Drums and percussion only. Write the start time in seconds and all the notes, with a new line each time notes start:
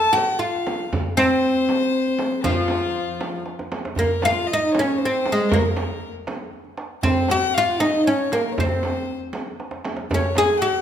0.14 tombak tek, frame drum
0.55 tombak ka
0.67 tombak tek, frame drum
0.93 frame drum, tombak dum
1.17 tombak tek, frame drum
1.69 tombak tek, frame drum
2.07 tombak ka
2.19 tombak tek, frame drum
2.44 frame drum, tombak dum
2.68 tombak tek, frame drum
3.21 tombak tek, frame drum
3.46 tombak tek
3.59 tombak ka
3.72 tombak tek, frame drum
3.85 tombak ka
3.96 tombak dum, frame drum
4.22 tombak tek, frame drum
4.74 tombak tek, frame drum
5.01 tombak ka
5.13 tombak ka
5.26 tombak tek, frame drum
5.52 frame drum, tombak dum
5.77 tombak tek, frame drum
6.27 tombak tek, frame drum
6.53 tombak ka
6.64 tombak ka
6.77 tombak tek
7.03 tombak dum, frame drum
7.28 tombak tek, frame drum
7.80 tombak tek, frame drum
8.07 tombak ka
8.20 tombak ka
8.32 tombak tek, frame drum
8.58 frame drum, tombak dum
8.83 tombak tek, frame drum
9.33 tombak tek, frame drum
9.60 tombak tek
9.71 tombak ka
9.85 tombak tek, frame drum
9.97 tombak ka
10.11 tombak dum, frame drum
10.35 tombak tek, frame drum